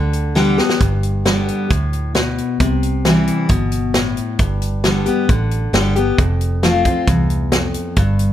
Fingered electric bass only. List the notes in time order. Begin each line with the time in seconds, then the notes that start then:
Already playing: D2
0.81 G1
1.71 D2
2.60 C2
3.49 G1
4.39 G1
5.29 A1
5.73 G1
6.19 F1
7.07 C2
7.97 G1